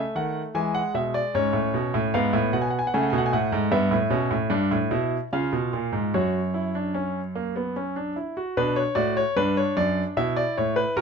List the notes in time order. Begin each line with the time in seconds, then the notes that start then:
Already playing: A3 E5
0.15 D#3 F#5
0.55 E3 G#3 G#5
0.75 F#5
0.94 B2 E5
1.14 D5
1.34 G#2 C#4 C#5
1.53 A2
1.74 B2
1.94 A2
2.14 G#2 B3 F5
2.33 A2
2.53 B2 F#5
2.61 G#5
2.70 F#5
2.79 G#5
2.87 F#5
2.94 C#3 A3 G#5
3.02 F#5
3.10 B2 G#5
3.18 F#5
3.26 G#5
3.33 A2 F#5
3.52 G#2
3.71 G2 B3 E5
3.91 A2
4.10 B2 C#4
4.31 A2
4.50 G2 D4
4.71 A2
4.91 B2 E4
5.33 C#3 F4 F5
5.53 B2
5.73 A#2
5.92 G#2
6.14 F#2 F#4 C#5
6.54 E4
6.75 D4
6.94 C#4
7.35 A#3
7.56 B3
7.76 C#4
7.96 D4
8.16 E4
8.37 F#4
8.57 B2 D4 B4
8.76 C#5
8.95 A2 F#4 D5
9.17 C#5
9.36 G2 D4 B4
9.57 C#5
9.77 F#2 D5
10.17 B2 E4 E5
10.37 D5
10.57 A2 C#5
10.76 B4
10.97 A#2 F#4 A#4